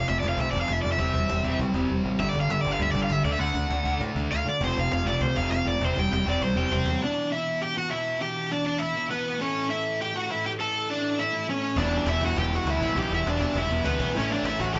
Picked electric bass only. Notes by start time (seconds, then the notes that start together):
0.09 F1
0.22 F1
0.37 C2
0.52 F1
0.69 F1
0.85 F2
0.98 E1
1.14 E1
1.31 E1
1.44 E1
1.59 B1
1.74 E1
1.89 E1
2.05 A1
2.19 G1
2.35 G1
2.48 G1
2.65 G1
2.79 D2
2.94 G1
3.09 G1
3.24 D2
3.39 D2
3.54 D2
3.70 D2
3.85 D2
4.01 A2
4.15 D2
4.31 D2
4.46 D3
4.61 F1
4.77 F1
4.92 F1
5.06 F1
5.21 C2
5.37 F1
5.50 F1
5.65 F1
5.81 E1
5.97 E1
6.11 E1
6.26 E1
6.42 B1
6.54 E1
6.70 E1
6.85 E2
11.76 E1
12.05 E1
12.21 E1
12.36 E1
12.65 D2
12.81 A1
12.95 B1
13.11 E1
13.25 E1
13.55 E1
13.69 E1
13.83 D2
14.00 B1
14.15 A1
14.43 A1
14.60 A1
14.75 A1